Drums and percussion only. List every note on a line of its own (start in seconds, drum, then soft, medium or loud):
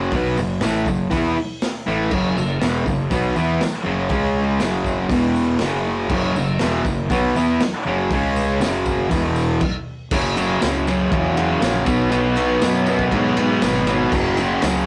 0.11 kick loud
0.11 open hi-hat medium
0.11 tambourine soft
0.37 tambourine medium
0.61 snare loud
0.61 open hi-hat medium
0.61 tambourine medium
0.86 kick medium
0.86 tambourine medium
1.11 kick loud
1.11 open hi-hat medium
1.11 tambourine medium
1.62 snare loud
1.62 open hi-hat medium
1.62 tambourine medium
1.88 tambourine soft
2.11 kick loud
2.11 crash loud
2.38 tambourine medium
2.61 snare loud
2.61 open hi-hat medium
2.61 tambourine medium
2.86 kick medium
2.86 tambourine medium
3.11 kick loud
3.11 open hi-hat medium
3.11 tambourine medium
3.36 tambourine medium
3.61 snare loud
3.61 open hi-hat medium
3.61 tambourine medium
4.09 kick loud
4.09 open hi-hat medium
4.60 snare loud
4.60 open hi-hat medium
4.60 tambourine medium
4.85 kick medium
4.85 tambourine medium
5.09 kick loud
5.09 open hi-hat medium
5.09 tambourine medium
5.36 tambourine medium
5.59 snare loud
5.59 open hi-hat medium
5.59 tambourine medium
6.10 kick loud
6.10 crash loud
6.36 tambourine medium
6.59 snare loud
6.59 open hi-hat medium
6.59 tambourine loud
6.85 kick medium
6.85 tambourine medium
7.10 kick loud
7.10 open hi-hat medium
7.10 tambourine medium
7.36 tambourine medium
7.60 snare loud
7.60 open hi-hat medium
7.60 tambourine medium
8.11 kick loud
8.11 open hi-hat medium
8.11 tambourine soft
8.36 tambourine medium
8.61 snare loud
8.61 open hi-hat medium
8.61 tambourine loud
8.86 kick medium
8.86 tambourine medium
9.11 kick loud
9.11 open hi-hat medium
9.11 tambourine medium
9.36 tambourine medium
9.61 kick loud
9.61 crash loud
10.11 kick loud
10.11 crash loud
10.11 tambourine medium
10.37 ride medium
10.37 tambourine medium
10.62 snare loud
10.62 ride loud
10.62 tambourine medium
10.87 ride medium
10.87 tambourine medium
11.12 kick loud
11.12 ride medium
11.37 ride medium
11.37 tambourine soft
11.62 snare loud
11.62 ride loud
11.62 tambourine medium
11.86 kick loud
11.86 ride medium
11.86 tambourine medium
12.12 ride loud
12.12 tambourine medium
12.36 ride medium
12.36 tambourine medium
12.61 snare loud
12.61 ride loud
12.61 tambourine medium
12.86 ride medium
12.86 tambourine medium
12.99 kick medium
13.12 kick loud
13.12 ride loud
13.37 ride medium
13.37 tambourine soft
13.62 snare loud
13.62 ride loud
13.62 tambourine loud
13.87 ride medium
13.87 tambourine medium
14.12 kick loud
14.12 tambourine medium
14.12 crash loud
14.37 ride medium
14.37 tambourine medium
14.62 snare loud
14.62 ride loud
14.62 tambourine loud